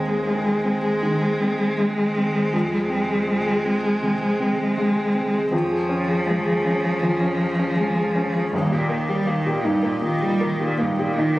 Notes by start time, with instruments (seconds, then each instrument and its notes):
Already playing: felt piano D#2 C4 G#4, cello G#3, harmonium G#3 G#4 C5
0.09 felt piano G#4
0.27 felt piano G#3
0.45 felt piano G#4
0.65 felt piano C4
0.83 felt piano G#4
1.03 felt piano D#3
1.22 felt piano G#4
1.42 felt piano C4
1.60 felt piano G#4
1.79 felt piano G#3
1.98 felt piano G#4
2.17 felt piano C4
2.36 felt piano G#4
2.53 felt piano F2
2.72 felt piano G#4
2.90 felt piano C4
3.08 felt piano G#4
3.27 felt piano G#3
3.46 felt piano G#4
3.65 felt piano C4
3.84 felt piano G#4
4.02 felt piano C3
4.21 felt piano G#4
4.40 felt piano C4
4.59 felt piano G#4
4.78 felt piano G#3
4.97 felt piano G#4
5.14 felt piano C4
5.33 felt piano G#4
5.52 felt piano F2, cello F3, harmonium G#3 G#4 C#5
5.71 felt piano G#4
5.89 felt piano C#4
6.08 felt piano G#4
6.26 felt piano G#3
6.45 felt piano G#4
6.65 felt piano C#4
6.84 felt piano G#4
7.02 felt piano F2
7.21 felt piano C#4
7.41 felt piano G#4
7.59 felt piano C#4
7.77 felt piano G#3
7.96 felt piano G#4
8.16 felt piano C#4
8.34 felt piano G#4
8.53 felt piano D#2, cello G2, harmonium A#3 G4 D#5
8.72 cello A#2, felt piano G4
8.90 cello D#3, felt piano A#4
9.09 cello G3, felt piano G4
9.27 cello D#3, felt piano A#3
9.46 cello A#2, felt piano G4
9.65 cello G2, felt piano D#4
9.83 cello A#2, felt piano A#4
10.02 felt piano A#2, cello D#3
10.21 cello G3, felt piano G4
10.41 cello D#3, felt piano A#4
10.60 cello A#2, felt piano G4
10.78 cello G2, felt piano A#3
10.99 cello A#2, felt piano G4
11.18 cello D#3, felt piano D#4